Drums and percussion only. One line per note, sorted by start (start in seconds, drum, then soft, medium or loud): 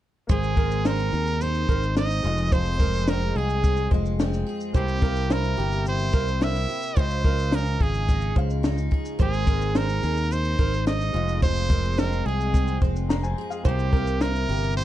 0.29 kick loud
0.29 shaker medium
0.43 shaker soft
0.57 kick medium
0.71 shaker soft
0.85 snare loud
0.85 shaker medium
0.99 shaker soft
1.27 shaker soft
1.41 shaker medium
1.54 shaker soft
1.69 kick medium
1.83 shaker soft
1.97 snare loud
1.97 shaker medium
2.11 shaker medium
2.38 shaker medium
2.52 kick loud
2.52 shaker medium
2.66 shaker soft
2.79 kick medium
2.79 shaker soft
2.93 shaker soft
3.08 snare loud
3.08 shaker medium
3.21 shaker soft
3.50 shaker soft
3.64 kick medium
3.64 shaker medium
3.76 shaker soft
3.91 kick medium
4.06 shaker soft
4.20 snare loud
4.20 shaker medium
4.33 snare soft
4.33 shaker medium
4.60 shaker medium
4.74 kick loud
4.74 shaker medium
4.88 shaker medium
5.02 kick medium
5.16 shaker soft
5.31 snare loud
5.31 shaker medium
5.44 shaker soft
5.72 shaker soft
5.86 shaker medium
5.99 shaker soft
6.13 kick medium
6.13 shaker medium
6.28 shaker soft
6.42 snare loud
6.42 shaker medium
6.55 snare soft
6.55 shaker medium
6.69 shaker soft
6.83 shaker medium
6.96 kick loud
6.96 shaker medium
7.10 shaker soft
7.24 kick medium
7.39 shaker soft
7.52 snare loud
7.52 shaker medium
7.66 shaker soft
7.80 kick medium
7.94 shaker soft
8.09 kick medium
8.09 shaker medium
8.21 shaker soft
8.36 kick medium
8.50 shaker soft
8.64 snare loud
8.64 shaker medium
8.78 shaker medium
8.92 kick medium
9.05 shaker medium
9.19 kick loud
9.19 shaker medium
9.33 shaker soft
9.47 kick medium
9.47 shaker soft
9.61 shaker soft
9.75 snare loud
9.75 shaker medium
9.89 shaker soft
10.03 shaker soft
10.17 shaker medium
10.32 shaker medium
10.45 shaker soft
10.59 kick medium
10.73 shaker soft
10.87 snare loud
10.87 shaker medium
11.01 snare soft
11.01 shaker medium
11.28 shaker medium
11.42 kick loud
11.42 shaker medium
11.56 shaker soft
11.70 kick medium
11.70 shaker medium
11.84 shaker soft
11.99 snare loud
11.99 shaker medium
12.12 shaker medium
12.40 shaker soft
12.54 kick medium
12.54 shaker medium
12.67 shaker soft
12.82 kick medium
12.96 shaker soft
13.10 snare loud
13.10 shaker medium
13.24 shaker medium
13.51 shaker medium
13.65 kick loud
13.65 shaker medium
13.79 shaker soft
13.93 kick medium
14.07 shaker soft
14.21 snare loud
14.21 shaker medium
14.35 shaker medium
14.63 shaker soft
14.78 shaker medium